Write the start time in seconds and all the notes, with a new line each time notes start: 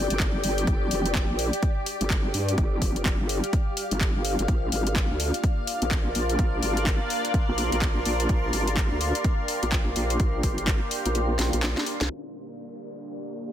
Already playing: G4 D5 G5
0.10 G1, closed hi-hat
0.20 kick, clap, closed hi-hat
0.43 G1, open hi-hat
0.58 closed hi-hat
0.67 G1, kick, closed hi-hat
0.91 F1, open hi-hat
1.06 closed hi-hat
1.15 kick, clap, closed hi-hat
1.29 A#1
1.38 F5, open hi-hat
1.53 closed hi-hat
1.63 kick, closed hi-hat
1.86 open hi-hat
2.01 G1, closed hi-hat
2.10 kick, clap, closed hi-hat
2.34 G2, open hi-hat
2.49 closed hi-hat
2.58 G1, kick, closed hi-hat
2.82 F1, kick, open hi-hat
2.96 closed hi-hat
3.05 kick, clap, closed hi-hat
3.20 G1
3.29 open hi-hat
3.44 closed hi-hat
3.53 kick, closed hi-hat
3.77 open hi-hat
3.91 G1, closed hi-hat
4.01 kick, clap, closed hi-hat
4.15 G1
4.25 open hi-hat
4.39 G1, closed hi-hat
4.48 A#1 A#3 D4 F4 A#4 D5, kick, closed hi-hat
4.72 G#1, open hi-hat
4.87 closed hi-hat
4.96 kick, clap, closed hi-hat
5.10 D2 C6
5.20 open hi-hat
5.34 closed hi-hat
5.44 kick, closed hi-hat
5.67 open hi-hat
5.82 A#1, closed hi-hat
5.91 kick, clap, closed hi-hat
6.15 A#1, open hi-hat
6.29 closed hi-hat
6.39 A#1, kick, closed hi-hat
6.63 G#1, open hi-hat
6.77 closed hi-hat
6.86 kick, clap, closed hi-hat
7.10 open hi-hat
7.25 closed hi-hat
7.34 kick, closed hi-hat
7.48 A#1
7.58 open hi-hat
7.72 A#1, closed hi-hat
7.82 kick, clap, closed hi-hat
8.05 A#1, open hi-hat
8.20 closed hi-hat
8.29 A#1 G4, kick, closed hi-hat
8.53 G#1, open hi-hat
8.68 closed hi-hat
8.77 kick, clap, closed hi-hat
8.91 D2
9.01 open hi-hat
9.15 closed hi-hat
9.24 kick, closed hi-hat
9.48 open hi-hat
9.63 A#1, closed hi-hat
9.72 kick, clap, closed hi-hat
9.96 A#1, open hi-hat
10.10 closed hi-hat
10.20 A#1, kick, closed hi-hat
10.43 G#1, kick, open hi-hat
10.58 closed hi-hat
10.67 kick, clap, closed hi-hat
10.91 open hi-hat
11.06 A#1, closed hi-hat
11.15 closed hi-hat
11.39 A#1, snare, open hi-hat
11.53 A#1, closed hi-hat
11.63 snare, clap, closed hi-hat
11.77 snare
11.86 open hi-hat
12.01 C2, snare, closed hi-hat
12.10 A#3 D4 G4 D5, downlifter
12.38 D5 G5
12.48 closed hi-hat
12.58 closed hi-hat
12.96 closed hi-hat
13.05 closed hi-hat
13.44 closed hi-hat